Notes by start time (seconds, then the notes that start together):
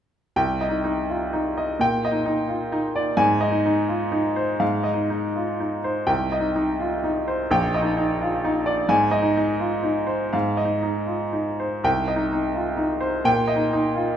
0.36 C2 G5
0.61 D#5
0.69 D#4
0.84 D#4
1.09 F4
1.33 D#4
1.58 D#5
1.79 A#2 G5
2.05 D#5
2.12 D#4
2.25 D#4
2.48 F4
2.72 D#4
2.96 D5
3.17 G#2 G#5
3.41 D#5
3.51 D#4
3.66 D#4
3.88 F4
4.12 D#4
4.36 C5
4.60 G#2 F5
4.83 D#5
4.93 D#4
5.10 D#4
5.36 F4
5.60 D#4
5.84 C5
6.07 C2 G5
6.32 D#5
6.40 D#4
6.56 D#4
6.80 F4
7.04 D#4
7.28 C5
7.51 A#1 G5
7.74 D#5
7.82 D#4
7.97 D#4
8.22 F4
8.45 D#4
8.66 D5
8.89 G#2 G#5
9.11 D#5
9.22 D#4
9.37 D#4
9.60 F4
9.83 D#4
10.07 C5
10.33 G#2 F5
10.57 D#5
10.65 D#4
10.82 D#4
11.06 F4
11.33 D#4
11.60 C5
11.84 C2 G5
12.08 D#5
12.16 D#4
12.33 D#4
12.55 F4
12.77 D#4
13.00 C5
13.25 A#2 G5
13.48 D#5
13.56 D#4
13.73 D#4
13.96 F4